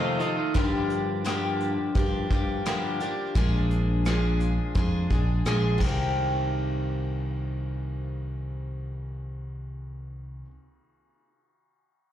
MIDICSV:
0, 0, Header, 1, 5, 480
1, 0, Start_track
1, 0, Key_signature, -3, "minor"
1, 0, Tempo, 701754
1, 373, Time_signature, 4, 2, 24, 8
1, 8293, End_track
2, 0, Start_track
2, 0, Title_t, "Twelve-string acoustic guitar"
2, 0, Program_c, 0, 25
2, 0, Note_on_c, 0, 41, 84
2, 0, Note_on_c, 0, 48, 92
2, 0, Note_on_c, 0, 51, 97
2, 0, Note_on_c, 0, 57, 96
2, 0, Note_on_c, 0, 63, 93
2, 0, Note_on_c, 0, 65, 103
2, 127, Note_off_c, 0, 65, 0
2, 133, Note_off_c, 0, 41, 0
2, 134, Note_off_c, 0, 63, 0
2, 135, Note_off_c, 0, 48, 0
2, 135, Note_off_c, 0, 51, 0
2, 136, Note_off_c, 0, 57, 0
2, 136, Note_on_c, 0, 65, 59
2, 142, Note_on_c, 0, 63, 52
2, 146, Note_on_c, 0, 57, 47
2, 150, Note_on_c, 0, 51, 46
2, 371, Note_on_c, 0, 43, 87
2, 374, Note_off_c, 0, 65, 0
2, 374, Note_on_c, 0, 50, 82
2, 376, Note_off_c, 0, 51, 0
2, 376, Note_off_c, 0, 57, 0
2, 377, Note_off_c, 0, 63, 0
2, 379, Note_on_c, 0, 53, 89
2, 379, Note_on_c, 0, 58, 95
2, 382, Note_on_c, 0, 62, 87
2, 383, Note_on_c, 0, 67, 96
2, 843, Note_off_c, 0, 43, 0
2, 847, Note_off_c, 0, 50, 0
2, 852, Note_on_c, 0, 43, 75
2, 855, Note_off_c, 0, 53, 0
2, 855, Note_on_c, 0, 50, 81
2, 856, Note_off_c, 0, 58, 0
2, 857, Note_off_c, 0, 67, 0
2, 858, Note_off_c, 0, 62, 0
2, 858, Note_on_c, 0, 53, 77
2, 859, Note_on_c, 0, 58, 100
2, 861, Note_on_c, 0, 62, 91
2, 865, Note_on_c, 0, 67, 105
2, 1331, Note_off_c, 0, 53, 0
2, 1332, Note_off_c, 0, 43, 0
2, 1333, Note_on_c, 0, 53, 61
2, 1334, Note_off_c, 0, 50, 0
2, 1338, Note_off_c, 0, 58, 0
2, 1338, Note_off_c, 0, 67, 0
2, 1341, Note_on_c, 0, 58, 59
2, 1343, Note_off_c, 0, 62, 0
2, 1346, Note_on_c, 0, 62, 57
2, 1349, Note_on_c, 0, 67, 72
2, 1569, Note_off_c, 0, 67, 0
2, 1572, Note_off_c, 0, 53, 0
2, 1576, Note_off_c, 0, 58, 0
2, 1576, Note_off_c, 0, 62, 0
2, 1577, Note_on_c, 0, 67, 63
2, 1584, Note_on_c, 0, 62, 49
2, 1588, Note_on_c, 0, 58, 47
2, 1592, Note_on_c, 0, 53, 46
2, 1814, Note_off_c, 0, 67, 0
2, 1815, Note_off_c, 0, 53, 0
2, 1816, Note_off_c, 0, 58, 0
2, 1818, Note_off_c, 0, 62, 0
2, 1818, Note_on_c, 0, 43, 82
2, 1822, Note_on_c, 0, 50, 101
2, 1823, Note_on_c, 0, 53, 94
2, 1824, Note_on_c, 0, 58, 87
2, 1828, Note_on_c, 0, 67, 90
2, 1829, Note_on_c, 0, 62, 89
2, 2048, Note_off_c, 0, 67, 0
2, 2053, Note_off_c, 0, 62, 0
2, 2054, Note_off_c, 0, 43, 0
2, 2056, Note_on_c, 0, 67, 54
2, 2057, Note_off_c, 0, 50, 0
2, 2057, Note_off_c, 0, 53, 0
2, 2058, Note_off_c, 0, 58, 0
2, 2061, Note_on_c, 0, 62, 60
2, 2068, Note_on_c, 0, 58, 49
2, 2072, Note_on_c, 0, 53, 49
2, 2291, Note_off_c, 0, 53, 0
2, 2294, Note_off_c, 0, 67, 0
2, 2296, Note_off_c, 0, 62, 0
2, 2296, Note_on_c, 0, 46, 87
2, 2298, Note_off_c, 0, 58, 0
2, 2299, Note_on_c, 0, 53, 81
2, 2301, Note_on_c, 0, 56, 90
2, 2305, Note_on_c, 0, 62, 93
2, 2308, Note_on_c, 0, 68, 95
2, 2769, Note_off_c, 0, 46, 0
2, 2771, Note_off_c, 0, 53, 0
2, 2775, Note_off_c, 0, 56, 0
2, 2777, Note_on_c, 0, 46, 90
2, 2778, Note_off_c, 0, 62, 0
2, 2779, Note_off_c, 0, 68, 0
2, 2779, Note_on_c, 0, 53, 80
2, 2783, Note_on_c, 0, 56, 84
2, 2786, Note_on_c, 0, 62, 78
2, 2789, Note_on_c, 0, 68, 91
2, 3249, Note_off_c, 0, 53, 0
2, 3254, Note_off_c, 0, 46, 0
2, 3255, Note_off_c, 0, 56, 0
2, 3257, Note_on_c, 0, 53, 59
2, 3259, Note_off_c, 0, 62, 0
2, 3260, Note_off_c, 0, 68, 0
2, 3264, Note_on_c, 0, 56, 56
2, 3268, Note_on_c, 0, 62, 64
2, 3274, Note_on_c, 0, 68, 67
2, 3482, Note_off_c, 0, 68, 0
2, 3490, Note_on_c, 0, 68, 56
2, 3491, Note_off_c, 0, 62, 0
2, 3494, Note_off_c, 0, 53, 0
2, 3497, Note_off_c, 0, 56, 0
2, 3499, Note_on_c, 0, 62, 42
2, 3506, Note_on_c, 0, 56, 45
2, 3731, Note_off_c, 0, 68, 0
2, 3732, Note_off_c, 0, 56, 0
2, 3733, Note_on_c, 0, 46, 85
2, 3735, Note_off_c, 0, 62, 0
2, 3738, Note_on_c, 0, 53, 80
2, 3741, Note_on_c, 0, 56, 78
2, 3742, Note_on_c, 0, 68, 99
2, 3744, Note_on_c, 0, 62, 85
2, 3950, Note_off_c, 0, 46, 0
2, 3952, Note_on_c, 0, 48, 70
2, 3972, Note_off_c, 0, 53, 0
2, 3975, Note_on_c, 0, 51, 70
2, 3976, Note_off_c, 0, 56, 0
2, 3977, Note_off_c, 0, 68, 0
2, 3978, Note_off_c, 0, 62, 0
2, 3993, Note_on_c, 0, 58, 84
2, 4010, Note_on_c, 0, 60, 81
2, 4027, Note_on_c, 0, 67, 85
2, 7148, Note_off_c, 0, 48, 0
2, 7159, Note_off_c, 0, 51, 0
2, 7168, Note_off_c, 0, 58, 0
2, 7176, Note_off_c, 0, 60, 0
2, 7185, Note_off_c, 0, 67, 0
2, 8293, End_track
3, 0, Start_track
3, 0, Title_t, "Clean electric guitar"
3, 0, Program_c, 1, 27
3, 0, Note_on_c, 1, 41, 96
3, 0, Note_on_c, 1, 48, 91
3, 9, Note_on_c, 1, 65, 70
3, 18, Note_on_c, 1, 63, 64
3, 23, Note_on_c, 1, 57, 67
3, 30, Note_on_c, 1, 51, 59
3, 120, Note_off_c, 1, 51, 0
3, 126, Note_off_c, 1, 57, 0
3, 128, Note_on_c, 1, 51, 78
3, 131, Note_off_c, 1, 63, 0
3, 134, Note_on_c, 1, 57, 68
3, 137, Note_off_c, 1, 65, 0
3, 139, Note_on_c, 1, 63, 74
3, 145, Note_on_c, 1, 65, 80
3, 243, Note_off_c, 1, 65, 0
3, 248, Note_off_c, 1, 63, 0
3, 249, Note_off_c, 1, 41, 0
3, 251, Note_on_c, 1, 65, 75
3, 252, Note_off_c, 1, 48, 0
3, 256, Note_off_c, 1, 57, 0
3, 256, Note_on_c, 1, 63, 65
3, 261, Note_off_c, 1, 51, 0
3, 264, Note_on_c, 1, 57, 66
3, 269, Note_on_c, 1, 51, 62
3, 358, Note_off_c, 1, 65, 0
3, 360, Note_off_c, 1, 63, 0
3, 364, Note_off_c, 1, 57, 0
3, 366, Note_off_c, 1, 51, 0
3, 8293, End_track
4, 0, Start_track
4, 0, Title_t, "Picked electric bass"
4, 0, Program_c, 2, 34
4, 377, Note_on_c, 2, 43, 104
4, 1213, Note_off_c, 2, 43, 0
4, 1337, Note_on_c, 2, 43, 85
4, 1544, Note_off_c, 2, 43, 0
4, 1578, Note_on_c, 2, 43, 83
4, 1785, Note_off_c, 2, 43, 0
4, 2295, Note_on_c, 2, 34, 99
4, 3132, Note_off_c, 2, 34, 0
4, 3251, Note_on_c, 2, 41, 85
4, 3461, Note_off_c, 2, 41, 0
4, 3492, Note_on_c, 2, 34, 89
4, 3701, Note_off_c, 2, 34, 0
4, 3731, Note_on_c, 2, 34, 80
4, 3947, Note_off_c, 2, 34, 0
4, 3971, Note_on_c, 2, 36, 75
4, 7129, Note_off_c, 2, 36, 0
4, 8293, End_track
5, 0, Start_track
5, 0, Title_t, "Drums"
5, 137, Note_on_c, 9, 42, 66
5, 206, Note_off_c, 9, 42, 0
5, 377, Note_on_c, 9, 36, 92
5, 380, Note_on_c, 9, 42, 68
5, 445, Note_off_c, 9, 36, 0
5, 448, Note_off_c, 9, 42, 0
5, 614, Note_on_c, 9, 42, 54
5, 683, Note_off_c, 9, 42, 0
5, 860, Note_on_c, 9, 42, 86
5, 867, Note_on_c, 9, 37, 114
5, 928, Note_off_c, 9, 42, 0
5, 936, Note_off_c, 9, 37, 0
5, 1097, Note_on_c, 9, 42, 60
5, 1166, Note_off_c, 9, 42, 0
5, 1337, Note_on_c, 9, 36, 100
5, 1338, Note_on_c, 9, 42, 87
5, 1405, Note_off_c, 9, 36, 0
5, 1406, Note_off_c, 9, 42, 0
5, 1576, Note_on_c, 9, 42, 62
5, 1577, Note_on_c, 9, 36, 79
5, 1644, Note_off_c, 9, 42, 0
5, 1646, Note_off_c, 9, 36, 0
5, 1816, Note_on_c, 9, 42, 86
5, 1823, Note_on_c, 9, 37, 104
5, 1884, Note_off_c, 9, 42, 0
5, 1892, Note_off_c, 9, 37, 0
5, 2054, Note_on_c, 9, 42, 64
5, 2123, Note_off_c, 9, 42, 0
5, 2291, Note_on_c, 9, 42, 84
5, 2294, Note_on_c, 9, 36, 108
5, 2359, Note_off_c, 9, 42, 0
5, 2363, Note_off_c, 9, 36, 0
5, 2536, Note_on_c, 9, 42, 61
5, 2604, Note_off_c, 9, 42, 0
5, 2771, Note_on_c, 9, 42, 74
5, 2779, Note_on_c, 9, 37, 97
5, 2840, Note_off_c, 9, 42, 0
5, 2847, Note_off_c, 9, 37, 0
5, 3010, Note_on_c, 9, 42, 53
5, 3078, Note_off_c, 9, 42, 0
5, 3246, Note_on_c, 9, 42, 69
5, 3252, Note_on_c, 9, 36, 100
5, 3315, Note_off_c, 9, 42, 0
5, 3321, Note_off_c, 9, 36, 0
5, 3490, Note_on_c, 9, 42, 56
5, 3493, Note_on_c, 9, 36, 72
5, 3558, Note_off_c, 9, 42, 0
5, 3561, Note_off_c, 9, 36, 0
5, 3729, Note_on_c, 9, 42, 68
5, 3737, Note_on_c, 9, 37, 109
5, 3798, Note_off_c, 9, 42, 0
5, 3805, Note_off_c, 9, 37, 0
5, 3969, Note_on_c, 9, 51, 81
5, 3970, Note_on_c, 9, 36, 68
5, 4037, Note_off_c, 9, 51, 0
5, 4039, Note_off_c, 9, 36, 0
5, 8293, End_track
0, 0, End_of_file